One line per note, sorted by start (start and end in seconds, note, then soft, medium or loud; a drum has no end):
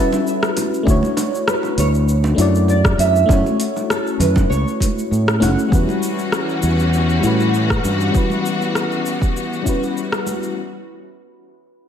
0.00 0.89 G3 loud
0.00 0.89 C#4 medium
0.00 0.87 E4 medium
0.00 0.88 F#4 medium
0.00 0.53 A4 medium
0.00 0.89 B4 loud
0.12 high bongo medium
0.12 shaker soft
0.27 shaker soft
0.43 cross-stick medium
0.43 shaker soft
0.57 open hi-hat medium
0.57 high bongo medium
0.57 high conga medium
0.57 shaker medium
0.74 shaker soft
0.83 1.00 D2 loud
0.83 2.33 A3 loud
0.83 2.34 D4 medium
0.83 2.35 E4 medium
0.83 kick loud
0.88 2.36 F#4 medium
0.88 2.37 C#5 loud
0.88 shaker soft
1.03 high conga medium
1.03 shaker soft
1.17 open hi-hat medium
1.17 high bongo medium
1.17 shaker medium
1.35 shaker soft
1.48 1.79 B4 medium
1.48 cross-stick medium
1.48 shaker soft
1.63 high bongo medium
1.63 shaker soft
1.77 2.34 D2 loud
1.77 1.87 C#5 loud
1.77 open hi-hat medium
1.77 shaker medium
1.94 shaker soft
2.08 shaker soft
2.24 high bongo medium
2.24 shaker soft
2.35 2.94 F#2 medium
2.35 3.24 A3 medium
2.35 3.25 D4 medium
2.35 3.26 E4 medium
2.35 open hi-hat medium
2.39 3.27 F#4 medium
2.39 3.28 D5 loud
2.39 shaker medium
2.55 shaker soft
2.68 2.78 D5 medium
2.68 high bongo medium
2.68 shaker soft
2.84 kick loud
2.84 cross-stick medium
2.84 shaker soft
2.98 3.23 F#2 loud
2.98 3.28 E5 loud
2.98 open hi-hat medium
2.98 high conga medium
2.98 shaker medium
3.16 shaker soft
3.26 3.42 F#2 loud
3.26 4.76 A3 loud
3.26 4.77 C#4 medium
3.26 4.78 E4 medium
3.26 kick loud
3.26 high bongo medium
3.30 4.78 F#4 medium
3.30 4.79 C#5 loud
3.30 shaker soft
3.46 high conga medium
3.46 shaker soft
3.60 open hi-hat loud
3.60 shaker medium
3.76 high bongo medium
3.76 shaker soft
3.90 4.19 A4 medium
3.90 cross-stick medium
3.90 shaker soft
4.07 shaker soft
4.19 4.44 F#2 medium
4.19 4.48 B4 medium
4.19 open hi-hat loud
4.19 low conga medium
4.19 shaker medium
4.36 kick loud
4.36 high bongo medium
4.36 shaker soft
4.50 4.63 C#2 loud
4.50 5.37 C#5 loud
4.50 shaker soft
4.68 shaker soft
4.80 kick medium
4.80 open hi-hat loud
4.80 high bongo medium
4.80 high conga medium
4.80 shaker medium
4.99 shaker soft
5.11 5.43 A2 medium
5.11 shaker soft
5.28 cross-stick medium
5.28 shaker soft
5.40 5.55 F#1 medium
5.40 5.68 A3 loud
5.40 5.68 C#4 loud
5.40 5.68 E4 medium
5.40 5.69 F#4 loud
5.40 5.69 F#5 loud
5.40 open hi-hat medium
5.40 high bongo medium
5.40 high conga medium
5.40 shaker medium
5.59 shaker soft
5.68 5.85 E2 medium
5.68 10.53 E3 medium
5.68 7.18 G3 medium
5.68 7.19 C#4 medium
5.68 8.12 C#4 medium
5.68 7.20 E4 medium
5.68 10.53 F#4 medium
5.68 kick loud
5.73 10.53 G3 medium
5.73 7.21 F#4 medium
5.73 7.22 B4 medium
5.73 shaker soft
5.89 high conga medium
5.89 shaker soft
6.03 shaker medium
6.19 shaker soft
6.32 cross-stick medium
6.32 shaker soft
6.49 shaker soft
6.63 7.19 E2 medium
6.63 shaker medium
6.79 shaker soft
6.93 shaker soft
7.10 shaker soft
7.20 7.79 A2 medium
7.20 8.09 G3 medium
7.20 8.10 C#4 medium
7.20 8.11 E4 medium
7.20 shaker medium
7.25 8.12 F#4 medium
7.25 8.13 B4 medium
7.40 shaker soft
7.54 shaker soft
7.70 kick loud
7.70 cross-stick medium
7.70 shaker soft
7.84 8.09 G2 medium
7.84 high conga medium
7.84 shaker medium
8.01 shaker soft
8.10 9.60 G3 medium
8.10 9.61 C#4 medium
8.10 9.62 E4 medium
8.14 10.55 B3 medium
8.14 9.63 F#4 medium
8.14 9.64 B4 medium
8.14 kick loud
8.14 shaker soft
8.30 high conga medium
8.30 shaker soft
8.46 shaker medium
8.62 shaker soft
8.75 cross-stick medium
8.75 shaker soft
8.92 shaker soft
9.06 shaker medium
9.22 kick loud
9.22 shaker soft
9.37 shaker soft
9.53 shaker soft
9.62 10.52 G3 medium
9.62 10.52 C#4 medium
9.62 10.53 E4 medium
9.62 kick medium
9.67 10.54 F#4 medium
9.67 10.55 B4 medium
9.67 shaker medium
9.83 shaker soft
9.97 shaker soft
10.12 cross-stick medium
10.12 shaker soft
10.26 high conga medium
10.26 shaker medium
10.43 shaker soft